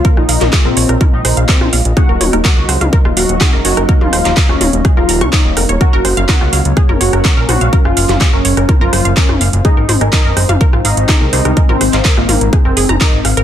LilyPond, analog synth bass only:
\new Staff \with { instrumentName = "Analog synth bass" } { \clef bass \time 4/4 \key ees \dorian \tempo 4 = 125 r16 bes,,16 bes,,16 bes,,16 r16 bes,,16 bes,,16 bes,,16 r16 bes,,16 bes,,16 bes,,16 r16 bes,,16 bes,,16 bes,,16 | r16 ees,,16 ees,,16 ees,,16 r16 des,16 des,16 des,16 r16 ees,,16 ees,,16 ees,,16 r16 ges,,16 ges,,16 ges,,16 | r16 ees,,16 ees,,16 ees,,16 r16 ees,,16 ees,,16 ees,,16 r16 ees,,16 ees,,16 des,16 r16 ees,,16 f,,16 ees,,16 | r16 ges,,16 ges,,16 ges,,16 r16 des,16 des,16 des,16 r16 ges,,16 ges,,16 ges,,16 r16 bes,,16 bes,,16 bes,,16 |
r16 ges,,16 ges,,16 ges,,16 r16 ges,,16 ges,,16 ges,,16 r16 ges,,16 ges,,16 ges,,16 r16 ges,,16 ges,,16 ges,,16 | r16 aes,,16 aes,,16 aes,,16 r16 ges,,16 ges,,16 ges,,16 r16 aes,,16 aes,,16 aes,,16 r16 c,16 c,16 c,16 | r16 aes,,16 aes,,16 aes,,16 r16 aes,,16 aes,,16 aes,,16 r16 ges,,16 ges,,16 ges,,16 r16 aes,,16 aes,,16 aes,,16 | }